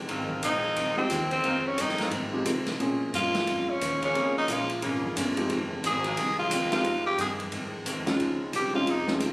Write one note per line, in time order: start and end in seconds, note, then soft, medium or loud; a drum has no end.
0.08 0.42 G#1 medium
0.08 0.31 F2 soft
0.08 1.02 D#3 medium
0.08 0.32 D#3 medium
0.08 1.02 G#3 medium
0.08 0.32 G#3 medium
0.08 1.02 C4 medium
0.08 1.02 F4 loud
0.08 ride medium
0.12 0.33 C4 medium
0.30 kick medium
0.42 0.76 A#1 medium
0.42 0.65 F2 medium
0.42 0.65 D#3 medium
0.42 0.66 G#3 medium
0.42 0.66 C4 medium
0.42 0.95 D#4 medium
0.42 hi-hat pedal medium
0.42 ride medium
0.75 1.09 C2 medium
0.75 0.98 F2 soft
0.75 0.99 D#3 medium
0.75 0.99 G#3 medium
0.75 1.00 C4 medium
0.75 ride medium
0.97 1.09 G#3 medium
0.97 1.09 C4 medium
0.97 1.29 C4 medium
0.97 1.09 D#4 medium
0.97 1.09 F4 medium
0.97 1.09 G4 medium
1.09 1.43 D#2 medium
1.09 1.32 F2 medium
1.09 1.33 D#3 medium
1.09 1.33 G#3 medium
1.09 1.33 C4 medium
1.09 hi-hat pedal medium
1.09 ride medium
1.31 1.68 C4 medium
1.31 ride soft
1.43 1.66 F2 soft
1.43 1.77 F2 medium
1.43 1.67 D#3 medium
1.43 1.59 D#3 medium
1.43 1.59 G#3 medium
1.43 1.67 G#3 medium
1.43 1.59 C4 medium
1.43 1.68 C4 medium
1.43 1.59 F4 loud
1.43 ride medium
1.67 1.83 C#4 medium
1.76 2.00 F2 medium
1.76 2.11 G2 medium
1.76 2.00 D#3 medium
1.76 2.00 G#3 medium
1.76 2.01 C4 medium
1.76 hi-hat pedal medium
1.76 ride medium
1.81 2.01 D#4 medium
1.89 snare soft
1.98 2.08 D#3 medium
1.98 2.08 G#3 medium
1.98 2.08 C4 medium
1.98 2.08 F4 loud
1.98 snare soft
1.98 ride soft
2.11 2.33 F2 medium
2.11 2.44 G#2 medium
2.11 2.34 D#3 medium
2.11 2.35 G#3 medium
2.11 2.35 C4 medium
2.11 ride medium
2.33 2.44 G#3 medium
2.33 2.44 C4 medium
2.33 2.45 D#4 medium
2.33 2.45 F4 medium
2.33 2.45 G4 medium
2.44 2.67 F2 medium
2.44 2.78 C3 medium
2.44 2.68 D#3 medium
2.44 2.68 G#3 medium
2.44 2.68 C4 medium
2.44 hi-hat pedal medium
2.44 ride medium
2.66 snare soft
2.66 ride medium
2.79 3.01 A#2 soft
2.79 3.12 A#2 medium
2.79 3.02 F3 medium
2.79 3.02 G#3 medium
2.79 3.73 A#3 medium
2.79 3.73 C4 soft
2.79 3.73 C#4 soft
2.79 3.03 C#4 medium
2.79 3.73 F4 soft
2.79 3.73 G#4 medium
2.79 ride medium
3.13 3.46 G2 loud
3.13 3.36 A#2 medium
3.13 3.36 F3 medium
3.13 3.36 G#3 medium
3.13 3.37 C#4 medium
3.13 3.71 F4 medium
3.13 hi-hat pedal medium
3.13 ride medium
3.34 snare medium
3.34 ride medium
3.47 3.80 F2 medium
3.47 3.69 A#2 soft
3.47 3.70 F3 soft
3.47 3.71 G#3 soft
3.47 3.71 C#4 medium
3.47 ride medium
3.70 4.03 C#4 medium
3.81 4.14 D#2 medium
3.81 4.03 A#2 medium
3.81 4.03 F3 medium
3.81 4.04 G#3 medium
3.81 4.04 C#4 medium
3.81 hi-hat pedal medium
3.81 ride medium
4.02 4.46 C#3 loud
4.02 4.46 G#3 medium
4.02 4.46 A#3 medium
4.02 4.35 C#4 medium
4.02 4.46 F4 loud
4.02 ride soft
4.14 4.47 C#2 medium
4.14 4.37 A#2 medium
4.14 4.37 F3 soft
4.14 4.38 G#3 medium
4.14 4.33 A#3 medium
4.14 4.33 C4 medium
4.14 4.33 C#4 soft
4.14 4.38 C#4 medium
4.14 4.34 F4 soft
4.14 4.34 G#4 medium
4.14 ride medium
4.38 4.54 D#4 medium
4.48 4.81 A#1 medium
4.48 4.71 A#2 medium
4.48 4.62 C#3 medium
4.48 4.71 F3 medium
4.48 4.62 G#3 medium
4.48 4.71 G#3 medium
4.48 4.62 A#3 medium
4.48 4.72 C#4 medium
4.48 4.62 F4 medium
4.48 hi-hat pedal medium
4.48 ride medium
4.52 4.71 F4 medium
4.69 ride medium
4.82 5.15 G#1 medium
4.82 5.04 A#2 medium
4.82 5.32 C#3 medium
4.82 5.05 F3 medium
4.82 5.32 G#3 medium
4.82 5.05 G#3 medium
4.82 5.32 A#3 medium
4.82 5.06 C#4 medium
4.82 5.33 F4 loud
4.82 ride medium
5.03 kick soft
5.15 5.48 G1 medium
5.15 5.38 A#2 medium
5.15 5.38 F3 medium
5.15 5.39 G#3 medium
5.15 5.39 C#4 medium
5.15 hi-hat pedal medium
5.15 ride medium
5.36 5.48 G#3 medium
5.36 5.48 C4 medium
5.36 5.48 D#4 medium
5.36 5.48 F4 medium
5.36 5.48 G4 medium
5.36 ride medium
5.48 5.82 F1 medium
5.48 5.71 F2 medium
5.48 5.71 D#3 medium
5.48 5.72 G#3 medium
5.48 5.73 C4 medium
5.48 ride medium
5.83 6.16 G#1 medium
5.83 6.05 F2 medium
5.83 6.06 D#3 medium
5.83 6.06 G#3 medium
5.83 6.06 C4 medium
5.83 6.36 G#4 loud
5.83 hi-hat pedal medium
5.83 ride medium
6.04 6.13 D#3 medium
6.04 6.13 G#3 medium
6.04 6.13 C4 medium
6.04 6.13 F4 loud
6.04 ride medium
6.17 6.50 C2 medium
6.17 6.39 F2 soft
6.17 6.39 D#3 medium
6.17 6.40 G#3 medium
6.17 6.40 C4 medium
6.17 ride medium
6.39 6.70 F4 medium
6.50 6.83 D#2 medium
6.50 6.73 F2 medium
6.50 6.73 D#3 medium
6.50 6.74 G#3 medium
6.50 6.74 C4 medium
6.50 hi-hat pedal medium
6.50 ride medium
6.71 7.16 D#3 medium
6.71 6.83 G#3 medium
6.71 7.16 G#3 medium
6.71 6.83 C4 medium
6.71 7.16 C4 medium
6.71 6.83 D#4 medium
6.71 6.83 F4 medium
6.71 7.16 F4 loud
6.71 7.03 F4 medium
6.71 6.84 G4 medium
6.71 snare soft
6.71 ride medium
6.83 7.06 F2 soft
6.83 7.17 F2 medium
6.83 7.07 D#3 soft
6.83 7.07 G#3 medium
6.83 7.08 C4 medium
6.83 ride medium
7.06 7.18 G4 loud
7.18 7.40 F2 medium
7.18 7.51 G2 loud
7.18 7.41 D#3 medium
7.18 7.41 G#3 medium
7.18 7.41 C4 medium
7.18 7.32 G#4 medium
7.18 hi-hat pedal medium
7.18 ride medium
7.40 ride soft
7.51 7.74 F2 medium
7.51 7.85 G#2 medium
7.51 7.74 D#3 medium
7.51 7.75 G#3 medium
7.51 7.75 C4 medium
7.51 ride medium
7.85 8.07 F2 medium
7.85 8.19 F2 medium
7.85 8.08 D#3 medium
7.85 8.08 G#3 medium
7.85 8.08 C4 medium
7.85 hi-hat pedal medium
7.85 ride medium
8.05 8.50 C#3 medium
8.05 8.50 G#3 medium
8.05 8.50 C4 medium
8.05 8.50 C#4 medium
8.05 8.51 D#4 medium
8.05 8.50 F4 loud
8.05 8.51 F4 medium
8.05 snare soft
8.05 ride medium
8.18 8.52 C#2 medium
8.18 8.41 C#3 medium
8.18 8.41 F3 medium
8.18 8.42 G#3 medium
8.18 8.42 C4 medium
8.18 ride medium
8.52 8.86 C2 loud
8.52 8.75 C#3 medium
8.52 8.75 F3 medium
8.52 8.75 G#3 medium
8.52 8.76 C4 medium
8.52 8.74 G4 medium
8.52 hi-hat pedal medium
8.52 ride medium
8.73 8.85 G#3 medium
8.73 8.85 C4 medium
8.73 8.85 C#4 medium
8.73 8.86 D#4 medium
8.73 8.86 F4 medium
8.73 8.92 F4 medium
8.86 9.20 F2 medium
8.86 9.09 C#3 medium
8.86 9.09 F3 soft
8.86 9.10 G#3 medium
8.86 9.10 C4 medium
8.86 ride medium
8.90 9.10 D#4 medium
9.07 9.19 G#3 medium
9.07 9.19 C4 medium
9.07 9.19 C#4 medium
9.07 9.19 D#4 medium
9.07 9.19 F4 medium
9.07 snare medium
9.20 9.33 C#2 medium
9.20 9.33 C#3 medium
9.20 9.33 F3 medium
9.20 9.33 G#3 medium
9.20 9.33 C4 medium
9.20 hi-hat pedal medium
9.20 ride medium